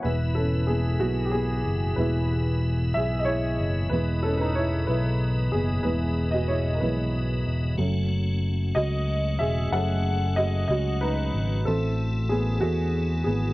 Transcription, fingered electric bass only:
X:1
M:6/8
L:1/8
Q:3/8=62
K:E
V:1 name="Fingered electric bass" clef=bass
E,,,3 B,,,2 F,,, | E,,,3 B,,,2 F,,, | E,,,3 B,,,2 F,,, | E,,,3 B,,,2 E,,, |
F,,,3 C,,2 E,,, | F,,,3 C,,2 G,,, | A,,,3 E,,2 G,,, |]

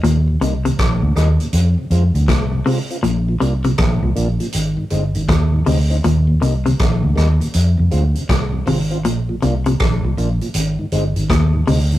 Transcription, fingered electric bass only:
X:1
M:4/4
L:1/16
Q:"Swing 16ths" 1/4=80
K:Eb
V:1 name="Fingered electric bass" clef=bass
E,,2 C,,2 B,,, D,, E,, z F,, z F,, D,, C,,2 z2 | B,,,2 C,,2 B,,, C,, B,,, z A,,, z G,,, A,,, E,,2 D,,2 | E,,2 C,,2 B,,, D,, E,, z F,, F,, D,, z C,,2 A,,,2 | B,,,2 C,,2 B,,, C,, B,,, z A,,, z G,,, A,,, E,,2 D,,2 |]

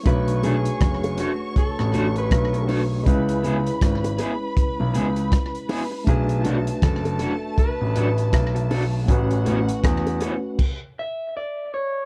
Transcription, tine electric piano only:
X:1
M:4/4
L:1/8
Q:"Swing 16ths" 1/4=80
K:Bdor
V:1 name="Tine electric piano"
[A,DFB]6 [A,DFB]2 | [G,CEB]8 | [A,DFB]8 | [A,CFB]4 z4 |]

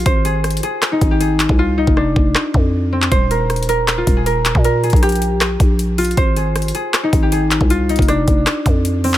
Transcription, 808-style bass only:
X:1
M:4/4
L:1/16
Q:1/4=157
K:Ablyd
V:1 name="808-style bass" clef=bass
A,,,6 z4 A,,,4- A,,, C,,- | C,,3 F,,,3 F,,,2 z2 F,,6 | E,,,8- E,,,2 E,,,4- E,,, B,,- | B,,3 B,,,6- B,,, B,,,6 |
A,,,6 z4 A,,,4- A,,, C,,- | C,,3 F,,,3 F,,,2 z2 F,,6 |]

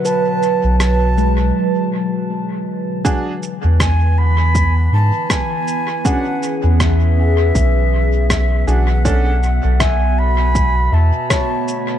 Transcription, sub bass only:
X:1
M:4/4
L:1/16
Q:"Swing 16ths" 1/4=80
K:Emix
V:1 name="Sub bass" clef=bass
z3 B,,,4- B,,, z8 | z3 E,,6- E,, G,, z4 z | z3 E,,4- E,, B,,,6 B,,,2- | B,,,3 B,,,6- B,,, E,, z4 z |]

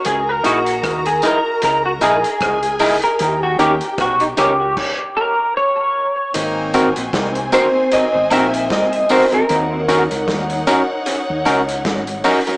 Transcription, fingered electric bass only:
X:1
M:4/4
L:1/16
Q:"Swing 16ths" 1/4=76
K:G#m
V:1 name="Fingered electric bass" clef=bass
C,,2 A,,,2 D,,2 z2 C,,2 A,,, z C,,3 z | D,,2 D,, z B,,,2 C,,2 z8 | G,,,3 A,,, ^B,,,2 z3 G,,, A,,,2 z4 | D,,3 C,, D,,2 z3 D,, C,,2 G,,,2 z2 |]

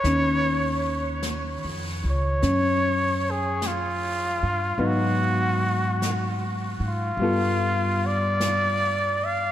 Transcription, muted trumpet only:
X:1
M:4/4
L:1/8
Q:"Swing" 1/4=50
K:Ebm
V:1 name="Muted trumpet"
d2 z d2 A F2 | G3 F2 =d2 f |]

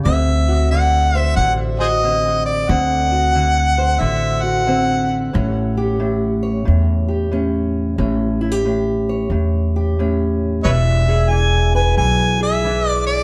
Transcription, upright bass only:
X:1
M:4/4
L:1/8
Q:"Swing" 1/4=90
K:Amix
V:1 name="Upright bass" clef=bass
D,,4 A,,,4 | D,,4 A,,,4 | A,,,4 E,,4 | A,,,4 E,,4 |
E,,,4 B,,,4 |]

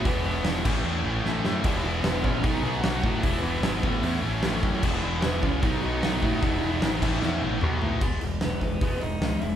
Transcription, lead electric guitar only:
X:1
M:4/4
L:1/8
Q:1/4=151
K:E
V:1 name="Lead electric guitar"
[B,B]2 z6 | z2 [B,B] [Cc] [Dd] [Gg] [Ff] [Ff] | [Ee] [B,B]4 z3 | z2 [B,B] [Cc] [Dd] [Dd]3- |
[Dd]6 z2 | z2 [B,B] [B,B]2 [Dd]2 [Ee] |]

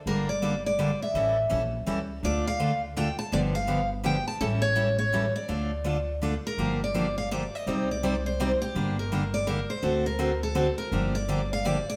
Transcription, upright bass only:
X:1
M:3/4
L:1/8
Q:"Swing" 1/4=166
K:Dm
V:1 name="Upright bass" clef=bass
G,,,6 | A,,,2 B,,,2 ^C,,2 | D,,6 | G,,,6 |
A,,,6 | D,,6 | [K:Gm] G,,,6 | C,,6 |
G,,,6 | D,,6 | G,,,6 |]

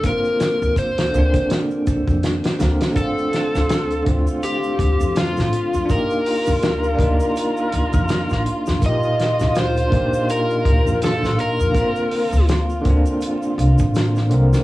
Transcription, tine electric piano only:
X:1
M:4/4
L:1/8
Q:"Swing 16ths" 1/4=82
K:Dphr
V:1 name="Tine electric piano"
[D,B,CF]3 [D,B,CD]4 [D,B,CB] | [D,A,CF]3 [D,A,CF]4- [D,A,CF] | [B,DEG]3 [B,DEF]4- [B,DEF] | [B,,B,EG]3 [B,DEG]4- [B,DEG] |
[D,B,CF]3 [D,B,CD]4 [D,B,CB] |]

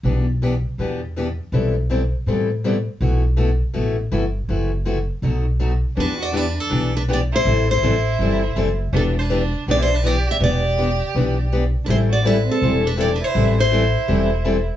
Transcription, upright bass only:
X:1
M:4/4
L:1/8
Q:"Swing" 1/4=162
K:Em
V:1 name="Upright bass" clef=bass
B,,,4 E,,4 | B,,,4 A,,4 | B,,,4 A,,,2 G,,,2 | F,,,4 B,,,4 |
E,,4 B,,,4 | A,,,2 A,,,2 G,,,2 F,,,2 | E,,,4 B,,,4 | E,,,4 B,,,4 |
A,,,4 E,,,4 | A,,,4 E,,,4 |]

